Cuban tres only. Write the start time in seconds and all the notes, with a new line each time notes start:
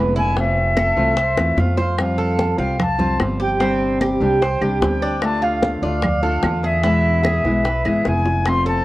Already playing: B4
0.16 E4
0.77 A4
1.17 C5
1.77 C5
2.18 A4
2.59 F5
2.99 C5
3.40 G4
3.60 C4
4.01 G4
4.42 C5
4.61 G4
5.02 D4
5.42 F4
5.82 D5
6.23 A4
6.64 G#4
6.84 E4
7.24 G#4
7.65 B4
7.85 G#4
8.66 A4